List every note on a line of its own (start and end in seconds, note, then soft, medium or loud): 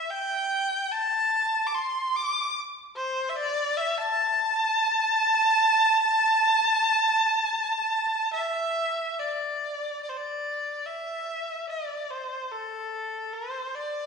0.00 0.11 E5 medium
0.10 0.94 G5 medium
0.92 1.68 A5 loud
1.67 1.76 D6 medium
1.75 2.18 C6 medium
2.16 2.57 D6 loud
2.96 3.31 C5 medium
3.29 3.38 E5 medium
3.36 3.78 D5 loud
3.77 3.99 E5 loud
3.97 8.33 A5 loud
8.33 9.21 E5 loud
9.19 10.02 D5 medium
10.03 10.11 D5 medium
10.09 10.18 C5 medium
10.16 10.87 D5 medium
10.86 11.69 E5 medium
11.69 12.12 D5 medium
12.11 12.53 C5 medium
12.52 13.35 A4 medium
13.34 13.76 C5 medium
13.75 14.06 D5 medium